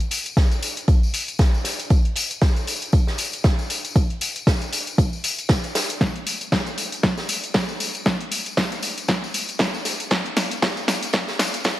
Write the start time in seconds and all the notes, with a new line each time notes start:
0.00 closed hi-hat
0.11 closed hi-hat, open hi-hat, tambourine
0.26 closed hi-hat, tambourine
0.37 kick, snare, closed hi-hat, tambourine
0.51 closed hi-hat, tambourine
0.62 closed hi-hat, open hi-hat, tambourine
0.77 closed hi-hat, tambourine
0.88 kick, closed hi-hat, tambourine
1.03 tambourine
1.14 closed hi-hat, open hi-hat, tambourine
1.28 closed hi-hat, tambourine
1.39 kick, snare, closed hi-hat, tambourine
1.54 tambourine
1.64 snare, closed hi-hat, open hi-hat, tambourine
1.79 closed hi-hat, tambourine
1.90 kick, closed hi-hat, tambourine
2.05 closed hi-hat
2.15 closed hi-hat, open hi-hat, tambourine
2.31 closed hi-hat, tambourine
2.41 kick, snare, closed hi-hat, tambourine
2.56 closed hi-hat, tambourine
2.67 closed hi-hat, open hi-hat, tambourine
2.82 closed hi-hat, tambourine
2.92 kick, closed hi-hat, tambourine
3.07 snare, tambourine
3.18 closed hi-hat, open hi-hat, tambourine
3.33 closed hi-hat, tambourine
3.44 kick, snare, closed hi-hat, tambourine
3.59 tambourine
3.70 closed hi-hat, open hi-hat, tambourine
3.85 closed hi-hat, tambourine
3.96 kick, closed hi-hat, tambourine
4.10 closed hi-hat
4.21 closed hi-hat, open hi-hat, tambourine
4.36 closed hi-hat, tambourine
4.47 kick, snare, closed hi-hat, tambourine
4.62 closed hi-hat, tambourine
4.73 closed hi-hat, open hi-hat, tambourine
4.87 closed hi-hat, tambourine
4.98 kick, closed hi-hat, tambourine
5.13 tambourine
5.24 closed hi-hat, open hi-hat, tambourine
5.39 closed hi-hat, tambourine
5.49 kick, snare, closed hi-hat, tambourine
5.64 closed hi-hat, tambourine
5.75 snare, closed hi-hat, open hi-hat, tambourine
5.90 closed hi-hat, tambourine
6.01 kick, snare, closed hi-hat, tambourine
6.16 closed hi-hat
6.26 closed hi-hat, open hi-hat, tambourine
6.41 closed hi-hat, tambourine
6.52 kick, snare, closed hi-hat, tambourine
6.66 closed hi-hat, tambourine
6.77 closed hi-hat, open hi-hat, tambourine
6.92 closed hi-hat, tambourine
7.03 kick, snare, closed hi-hat, tambourine
7.17 snare, tambourine
7.29 closed hi-hat, open hi-hat, tambourine
7.43 closed hi-hat, tambourine
7.54 kick, snare, closed hi-hat, tambourine
7.69 tambourine
7.80 closed hi-hat, open hi-hat, tambourine
7.95 closed hi-hat, tambourine
8.06 kick, snare, closed hi-hat, tambourine
8.21 closed hi-hat
8.32 closed hi-hat, open hi-hat, tambourine
8.46 closed hi-hat, tambourine
8.57 kick, snare, closed hi-hat, tambourine
8.72 closed hi-hat, tambourine
8.83 closed hi-hat, open hi-hat, tambourine
8.98 closed hi-hat, tambourine
9.08 kick, snare, closed hi-hat, tambourine
9.24 tambourine
9.34 closed hi-hat, open hi-hat, tambourine
9.48 closed hi-hat, tambourine
9.59 kick, snare, closed hi-hat, tambourine
9.74 tambourine
9.85 snare, closed hi-hat, open hi-hat, tambourine
10.00 closed hi-hat, tambourine
10.11 kick, snare, closed hi-hat, tambourine
10.26 closed hi-hat
10.37 snare, closed hi-hat, open hi-hat, tambourine
10.51 closed hi-hat, tambourine
10.62 kick, snare, closed hi-hat, tambourine
10.77 closed hi-hat, tambourine
10.88 snare, closed hi-hat, open hi-hat, tambourine
11.02 closed hi-hat, tambourine
11.13 kick, snare, closed hi-hat, tambourine
11.28 snare, tambourine
11.39 snare, closed hi-hat, open hi-hat, tambourine
11.54 closed hi-hat, tambourine
11.64 kick, snare, closed hi-hat, tambourine